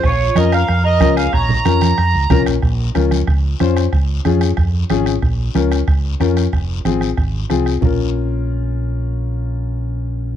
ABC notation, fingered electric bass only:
X:1
M:4/4
L:1/8
Q:1/4=185
K:Bbm
V:1 name="Fingered electric bass" clef=bass
B,,,2 F,,2 F,,2 D,,2 | B,,,2 F,,2 F,, D,, C,, B,,, | B,,,2 D,,2 D,,2 F,,2 | D,,2 F,,2 F,,2 A,,,2 |
B,,,2 D,,2 D,,2 F,,2 | F,,,2 A,,,2 A,,,2 C,,2 | B,,,8- | B,,,8 |]